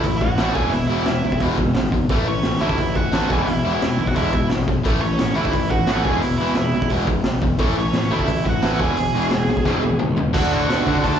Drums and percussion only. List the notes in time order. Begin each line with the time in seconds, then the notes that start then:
0.03 kick, open hi-hat
0.21 kick
0.38 snare, open hi-hat
0.55 kick
0.72 open hi-hat
1.06 snare, open hi-hat
1.32 kick
1.40 kick, open hi-hat
1.58 kick
1.74 snare, open hi-hat
1.92 kick
2.09 kick, open hi-hat
2.43 snare, open hi-hat
2.69 kick
2.78 kick, open hi-hat
2.95 kick
3.13 snare, open hi-hat
3.30 kick
3.47 open hi-hat
3.82 snare, open hi-hat
4.07 kick
4.16 kick, open hi-hat
4.33 kick
4.49 snare, open hi-hat
4.68 kick
4.85 kick, open hi-hat
5.19 snare, open hi-hat
5.45 kick
5.53 kick, open hi-hat
5.71 kick
5.87 snare, open hi-hat
6.05 kick
6.22 open hi-hat
6.55 snare, open hi-hat
6.82 kick
6.89 kick, open hi-hat
7.07 kick
7.24 snare, open hi-hat
7.42 kick
7.58 kick, open hi-hat
7.93 snare, open hi-hat
8.19 kick
8.28 kick, open hi-hat
8.45 kick
8.62 snare, open hi-hat
8.80 kick
8.97 open hi-hat
9.31 snare, open hi-hat
9.57 kick
9.65 kick, snare
9.83 high tom
9.99 mid tom
10.17 floor tom
10.34 kick, crash
10.70 snare, open hi-hat
10.87 kick
10.95 kick
11.04 kick, open hi-hat